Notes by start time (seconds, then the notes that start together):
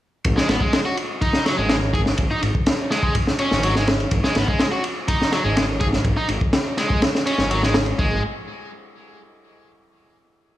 0.25 G#1, kick, ride
0.37 G#3, snare
0.48 G#1 B3, snare, ride
0.61 G#3, kick
0.73 G#3, snare, ride
0.85 F#4
0.97 ride
1.22 D#4, kick, ride
1.33 snare
1.45 F#3, snare, ride
1.57 G#1 G#3
1.69 G#3, snare, ride
1.94 G#4, kick, ride
2.06 snare
2.18 G#1, kick, ride
2.31 D#4
2.43 G#1, ride
2.55 kick
2.66 snare, ride
2.91 G#3, snare, ride
3.03 G#3, kick
3.15 kick, ride
3.27 snare
3.39 C#4, ride
3.51 G#1, snare
3.63 F#3, ride
3.75 G#3, snare
3.87 snare, ride
4.00 ride
4.11 G#1, kick, ride
4.24 G#3, snare
4.35 G#1 B3, snare, ride
4.48 G#3, kick
4.60 G#3, snare, ride
4.72 F#4
4.84 ride
5.08 D#4, kick, ride
5.22 snare
5.32 F#3, snare, ride
5.44 G#1 G#3
5.56 G#3, snare, ride
5.80 G#4, kick, ride
5.93 snare
6.04 G#1, kick, ride
6.17 D#4
6.29 G#1, ride
6.41 kick
6.53 snare, ride
6.78 G#3, snare, ride
6.89 G#3, kick
7.02 snare, ride
7.15 snare
7.26 C#4, ride
7.38 G#1, snare
7.50 F#3, ride
7.63 G#3, snare
7.74 snare, ride
7.86 ride
7.99 G#1 G#3, kick